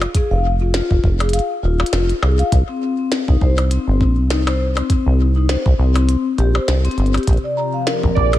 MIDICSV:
0, 0, Header, 1, 7, 480
1, 0, Start_track
1, 0, Tempo, 594059
1, 118, Time_signature, 4, 2, 24, 8
1, 6778, End_track
2, 0, Start_track
2, 0, Title_t, "Synth keys"
2, 0, Program_c, 0, 88
2, 6586, Note_on_c, 0, 74, 93
2, 6778, Note_off_c, 0, 74, 0
2, 6778, End_track
3, 0, Start_track
3, 0, Title_t, "Vibraphone"
3, 0, Program_c, 1, 11
3, 118, Note_on_c, 1, 68, 80
3, 219, Note_off_c, 1, 68, 0
3, 252, Note_on_c, 1, 77, 97
3, 332, Note_off_c, 1, 77, 0
3, 492, Note_on_c, 1, 65, 75
3, 546, Note_off_c, 1, 65, 0
3, 598, Note_on_c, 1, 65, 84
3, 666, Note_off_c, 1, 65, 0
3, 732, Note_on_c, 1, 65, 74
3, 764, Note_off_c, 1, 65, 0
3, 972, Note_on_c, 1, 68, 78
3, 1052, Note_off_c, 1, 68, 0
3, 1078, Note_on_c, 1, 77, 97
3, 1179, Note_off_c, 1, 77, 0
3, 1318, Note_on_c, 1, 65, 75
3, 1386, Note_off_c, 1, 65, 0
3, 1452, Note_on_c, 1, 65, 74
3, 1506, Note_off_c, 1, 65, 0
3, 1558, Note_on_c, 1, 65, 83
3, 1599, Note_off_c, 1, 65, 0
3, 1798, Note_on_c, 1, 68, 78
3, 1899, Note_off_c, 1, 68, 0
3, 1932, Note_on_c, 1, 77, 103
3, 2012, Note_off_c, 1, 77, 0
3, 2172, Note_on_c, 1, 60, 73
3, 2226, Note_off_c, 1, 60, 0
3, 2278, Note_on_c, 1, 60, 76
3, 2346, Note_off_c, 1, 60, 0
3, 2412, Note_on_c, 1, 60, 73
3, 2444, Note_off_c, 1, 60, 0
3, 2652, Note_on_c, 1, 63, 75
3, 2732, Note_off_c, 1, 63, 0
3, 2758, Note_on_c, 1, 72, 97
3, 2860, Note_off_c, 1, 72, 0
3, 2998, Note_on_c, 1, 60, 81
3, 3066, Note_off_c, 1, 60, 0
3, 3132, Note_on_c, 1, 60, 72
3, 3186, Note_off_c, 1, 60, 0
3, 3238, Note_on_c, 1, 60, 75
3, 3278, Note_off_c, 1, 60, 0
3, 3478, Note_on_c, 1, 63, 84
3, 3579, Note_off_c, 1, 63, 0
3, 3612, Note_on_c, 1, 72, 103
3, 3692, Note_off_c, 1, 72, 0
3, 3852, Note_on_c, 1, 60, 77
3, 3906, Note_off_c, 1, 60, 0
3, 3958, Note_on_c, 1, 60, 80
3, 4026, Note_off_c, 1, 60, 0
3, 4092, Note_on_c, 1, 60, 75
3, 4124, Note_off_c, 1, 60, 0
3, 4332, Note_on_c, 1, 63, 72
3, 4412, Note_off_c, 1, 63, 0
3, 4438, Note_on_c, 1, 72, 102
3, 4539, Note_off_c, 1, 72, 0
3, 4678, Note_on_c, 1, 60, 73
3, 4746, Note_off_c, 1, 60, 0
3, 4812, Note_on_c, 1, 60, 75
3, 4866, Note_off_c, 1, 60, 0
3, 4918, Note_on_c, 1, 60, 83
3, 4959, Note_off_c, 1, 60, 0
3, 5158, Note_on_c, 1, 67, 101
3, 5226, Note_off_c, 1, 67, 0
3, 5292, Note_on_c, 1, 72, 98
3, 5346, Note_off_c, 1, 72, 0
3, 5532, Note_on_c, 1, 60, 96
3, 5564, Note_off_c, 1, 60, 0
3, 5638, Note_on_c, 1, 60, 77
3, 5706, Note_off_c, 1, 60, 0
3, 5773, Note_on_c, 1, 67, 77
3, 5826, Note_off_c, 1, 67, 0
3, 6012, Note_on_c, 1, 74, 71
3, 6092, Note_off_c, 1, 74, 0
3, 6118, Note_on_c, 1, 82, 96
3, 6220, Note_off_c, 1, 82, 0
3, 6252, Note_on_c, 1, 77, 76
3, 6332, Note_off_c, 1, 77, 0
3, 6358, Note_on_c, 1, 70, 82
3, 6426, Note_off_c, 1, 70, 0
3, 6492, Note_on_c, 1, 70, 73
3, 6546, Note_off_c, 1, 70, 0
3, 6778, End_track
4, 0, Start_track
4, 0, Title_t, "Analog synth pad"
4, 0, Program_c, 2, 89
4, 5878, Note_on_c, 2, 48, 87
4, 6105, Note_on_c, 2, 53, 70
4, 6576, Note_on_c, 2, 68, 88
4, 6778, Note_off_c, 2, 48, 0
4, 6778, Note_off_c, 2, 53, 0
4, 6778, Note_off_c, 2, 68, 0
4, 6778, End_track
5, 0, Start_track
5, 0, Title_t, "Acid bass"
5, 0, Program_c, 3, 38
5, 253, Note_on_c, 3, 29, 99
5, 660, Note_off_c, 3, 29, 0
5, 732, Note_on_c, 3, 29, 80
5, 802, Note_off_c, 3, 29, 0
5, 838, Note_on_c, 3, 29, 99
5, 1139, Note_off_c, 3, 29, 0
5, 1318, Note_on_c, 3, 27, 91
5, 1486, Note_off_c, 3, 27, 0
5, 1558, Note_on_c, 3, 29, 101
5, 1726, Note_off_c, 3, 29, 0
5, 1798, Note_on_c, 3, 36, 96
5, 1967, Note_off_c, 3, 36, 0
5, 2038, Note_on_c, 3, 36, 100
5, 2127, Note_off_c, 3, 36, 0
5, 2652, Note_on_c, 3, 36, 82
5, 2722, Note_off_c, 3, 36, 0
5, 2758, Note_on_c, 3, 36, 96
5, 3059, Note_off_c, 3, 36, 0
5, 3132, Note_on_c, 3, 31, 102
5, 3238, Note_on_c, 3, 34, 100
5, 3250, Note_off_c, 3, 31, 0
5, 3372, Note_on_c, 3, 36, 87
5, 3384, Note_off_c, 3, 34, 0
5, 3901, Note_off_c, 3, 36, 0
5, 4092, Note_on_c, 3, 36, 95
5, 4499, Note_off_c, 3, 36, 0
5, 4572, Note_on_c, 3, 36, 81
5, 4642, Note_off_c, 3, 36, 0
5, 4678, Note_on_c, 3, 36, 101
5, 4979, Note_off_c, 3, 36, 0
5, 5158, Note_on_c, 3, 34, 95
5, 5326, Note_off_c, 3, 34, 0
5, 5398, Note_on_c, 3, 36, 100
5, 5566, Note_off_c, 3, 36, 0
5, 5638, Note_on_c, 3, 31, 99
5, 5806, Note_off_c, 3, 31, 0
5, 5878, Note_on_c, 3, 34, 102
5, 5967, Note_off_c, 3, 34, 0
5, 6492, Note_on_c, 3, 34, 82
5, 6562, Note_off_c, 3, 34, 0
5, 6598, Note_on_c, 3, 34, 99
5, 6778, Note_off_c, 3, 34, 0
5, 6778, End_track
6, 0, Start_track
6, 0, Title_t, "Percussion blips"
6, 12, Note_on_c, 9, 76, 54
6, 93, Note_off_c, 9, 76, 0
6, 972, Note_on_c, 9, 76, 50
6, 1053, Note_off_c, 9, 76, 0
6, 1452, Note_on_c, 9, 76, 63
6, 1533, Note_off_c, 9, 76, 0
6, 1798, Note_on_c, 9, 76, 60
6, 1879, Note_off_c, 9, 76, 0
6, 2892, Note_on_c, 9, 76, 50
6, 2973, Note_off_c, 9, 76, 0
6, 3613, Note_on_c, 9, 76, 78
6, 3693, Note_off_c, 9, 76, 0
6, 3853, Note_on_c, 9, 76, 49
6, 3933, Note_off_c, 9, 76, 0
6, 4812, Note_on_c, 9, 76, 48
6, 4893, Note_off_c, 9, 76, 0
6, 5292, Note_on_c, 9, 76, 61
6, 5373, Note_off_c, 9, 76, 0
6, 5772, Note_on_c, 9, 76, 54
6, 5853, Note_off_c, 9, 76, 0
6, 6732, Note_on_c, 9, 76, 50
6, 6778, Note_off_c, 9, 76, 0
6, 6778, End_track
7, 0, Start_track
7, 0, Title_t, "Drums"
7, 12, Note_on_c, 9, 42, 37
7, 93, Note_off_c, 9, 42, 0
7, 118, Note_on_c, 9, 36, 107
7, 118, Note_on_c, 9, 42, 82
7, 199, Note_off_c, 9, 36, 0
7, 199, Note_off_c, 9, 42, 0
7, 598, Note_on_c, 9, 38, 124
7, 598, Note_on_c, 9, 42, 80
7, 679, Note_off_c, 9, 38, 0
7, 679, Note_off_c, 9, 42, 0
7, 732, Note_on_c, 9, 36, 110
7, 813, Note_off_c, 9, 36, 0
7, 838, Note_on_c, 9, 36, 106
7, 919, Note_off_c, 9, 36, 0
7, 972, Note_on_c, 9, 42, 52
7, 1043, Note_off_c, 9, 42, 0
7, 1043, Note_on_c, 9, 42, 42
7, 1078, Note_off_c, 9, 42, 0
7, 1078, Note_on_c, 9, 42, 83
7, 1123, Note_off_c, 9, 42, 0
7, 1123, Note_on_c, 9, 42, 34
7, 1204, Note_off_c, 9, 42, 0
7, 1505, Note_on_c, 9, 42, 57
7, 1558, Note_off_c, 9, 42, 0
7, 1558, Note_on_c, 9, 38, 127
7, 1558, Note_on_c, 9, 42, 86
7, 1639, Note_off_c, 9, 38, 0
7, 1639, Note_off_c, 9, 42, 0
7, 1692, Note_on_c, 9, 42, 39
7, 1773, Note_off_c, 9, 42, 0
7, 1932, Note_on_c, 9, 42, 37
7, 2013, Note_off_c, 9, 42, 0
7, 2038, Note_on_c, 9, 36, 110
7, 2038, Note_on_c, 9, 42, 80
7, 2119, Note_off_c, 9, 36, 0
7, 2119, Note_off_c, 9, 42, 0
7, 2518, Note_on_c, 9, 38, 120
7, 2518, Note_on_c, 9, 42, 80
7, 2599, Note_off_c, 9, 38, 0
7, 2599, Note_off_c, 9, 42, 0
7, 2652, Note_on_c, 9, 36, 108
7, 2733, Note_off_c, 9, 36, 0
7, 2758, Note_on_c, 9, 36, 107
7, 2839, Note_off_c, 9, 36, 0
7, 2892, Note_on_c, 9, 42, 52
7, 2973, Note_off_c, 9, 42, 0
7, 2998, Note_on_c, 9, 42, 81
7, 3079, Note_off_c, 9, 42, 0
7, 3238, Note_on_c, 9, 36, 87
7, 3319, Note_off_c, 9, 36, 0
7, 3478, Note_on_c, 9, 38, 125
7, 3478, Note_on_c, 9, 42, 83
7, 3559, Note_off_c, 9, 38, 0
7, 3559, Note_off_c, 9, 42, 0
7, 3613, Note_on_c, 9, 42, 38
7, 3693, Note_off_c, 9, 42, 0
7, 3853, Note_on_c, 9, 42, 37
7, 3933, Note_off_c, 9, 42, 0
7, 3958, Note_on_c, 9, 36, 106
7, 3958, Note_on_c, 9, 42, 78
7, 4039, Note_off_c, 9, 36, 0
7, 4039, Note_off_c, 9, 42, 0
7, 4438, Note_on_c, 9, 38, 122
7, 4438, Note_on_c, 9, 42, 74
7, 4519, Note_off_c, 9, 38, 0
7, 4519, Note_off_c, 9, 42, 0
7, 4572, Note_on_c, 9, 36, 110
7, 4653, Note_off_c, 9, 36, 0
7, 4812, Note_on_c, 9, 42, 52
7, 4893, Note_off_c, 9, 42, 0
7, 4918, Note_on_c, 9, 42, 77
7, 4999, Note_off_c, 9, 42, 0
7, 5158, Note_on_c, 9, 42, 36
7, 5239, Note_off_c, 9, 42, 0
7, 5398, Note_on_c, 9, 38, 125
7, 5398, Note_on_c, 9, 42, 80
7, 5479, Note_off_c, 9, 38, 0
7, 5479, Note_off_c, 9, 42, 0
7, 5532, Note_on_c, 9, 42, 34
7, 5585, Note_off_c, 9, 42, 0
7, 5585, Note_on_c, 9, 42, 28
7, 5638, Note_off_c, 9, 42, 0
7, 5638, Note_on_c, 9, 42, 23
7, 5705, Note_off_c, 9, 42, 0
7, 5705, Note_on_c, 9, 42, 19
7, 5772, Note_off_c, 9, 42, 0
7, 5772, Note_on_c, 9, 42, 34
7, 5798, Note_off_c, 9, 42, 0
7, 5798, Note_on_c, 9, 42, 28
7, 5842, Note_off_c, 9, 42, 0
7, 5842, Note_on_c, 9, 42, 22
7, 5878, Note_off_c, 9, 42, 0
7, 5878, Note_on_c, 9, 36, 106
7, 5878, Note_on_c, 9, 42, 75
7, 5922, Note_off_c, 9, 42, 0
7, 5922, Note_on_c, 9, 42, 15
7, 5958, Note_off_c, 9, 42, 0
7, 5958, Note_on_c, 9, 42, 13
7, 5959, Note_off_c, 9, 36, 0
7, 6039, Note_off_c, 9, 42, 0
7, 6358, Note_on_c, 9, 38, 117
7, 6358, Note_on_c, 9, 42, 72
7, 6439, Note_off_c, 9, 38, 0
7, 6439, Note_off_c, 9, 42, 0
7, 6492, Note_on_c, 9, 36, 103
7, 6573, Note_off_c, 9, 36, 0
7, 6598, Note_on_c, 9, 36, 101
7, 6679, Note_off_c, 9, 36, 0
7, 6732, Note_on_c, 9, 42, 49
7, 6778, Note_off_c, 9, 42, 0
7, 6778, End_track
0, 0, End_of_file